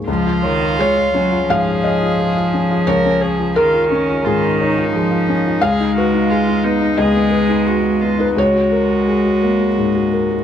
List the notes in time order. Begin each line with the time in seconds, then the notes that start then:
Already playing: C#2 G#2 A#3 G#4
0.07 C#2 F3 F4
0.26 F4
0.42 D#3 C#5
0.60 F4
0.77 G#3 G#4 C#5
0.97 F4
1.14 F#3 C#4
1.32 F4
1.49 G#2 F3 G#4 F5
1.67 F4
1.84 C#5 D#5
2.02 F4
2.19 G#4
2.37 F4
2.53 C#4
2.71 F4
2.87 C#2 A#4 C#5
3.05 C#4
3.22 G#4 C#5
3.39 F4
3.55 D#3 F4 G#4 A#4
3.74 F4
3.90 C#4
4.09 F4
4.25 G#2 D#3 F4 G#4
4.44 F4
4.59 D#4 C#5
4.78 F4
4.94 F3 G#4
5.11 F4
5.28 C#4
5.46 F4
5.61 C#2 G#3 G#4 F5
5.80 D#4
5.97 F#4 B4
6.14 D#4
6.30 F4 G#4
6.48 D#4
6.64 B3 D#4
6.81 D#4
6.98 C#2 G#3 G#4 D#5
7.14 B3
7.31 B4
7.49 D#4
7.65 F#4 G#4
7.82 D#4
8.01 B3 F4
8.18 D#4 B4
8.36 C#2 G#3 F#4 C#5
8.54 F#4
8.72 A#4
8.89 F#4
9.08 G#4
9.25 F#4
9.42 A#3
9.60 F#4
9.78 G#2
9.95 F#4
10.13 A#4
10.31 F#4